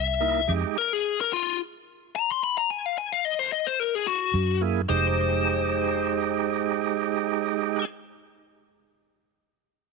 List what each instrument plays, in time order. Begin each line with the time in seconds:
Already playing: fingered electric bass C2, lead electric guitar E5
0.21 tonewheel organ A#3 D#4 E4
0.48 fingered electric bass F2, tonewheel organ G#3 D#4 G4
0.78 lead electric guitar A#4
0.93 lead electric guitar G#4
1.21 lead electric guitar A#4
1.33 lead electric guitar F4
2.16 lead electric guitar A#5
2.31 lead electric guitar C6
2.44 lead electric guitar B5
2.58 lead electric guitar A#5
2.70 lead electric guitar G#5
2.86 lead electric guitar F5
2.98 lead electric guitar G#5
3.12 lead electric guitar F5
3.25 lead electric guitar D#5
3.39 lead electric guitar C5
3.52 lead electric guitar D#5
3.67 lead electric guitar C5
3.80 lead electric guitar A#4
3.95 lead electric guitar G#4
4.07 lead electric guitar F#4
4.34 fingered electric bass F#2
4.61 tonewheel organ A#3 E4 G#4
4.88 fingered electric bass F1, tonewheel organ G#3 D#4 G4, lead electric guitar C5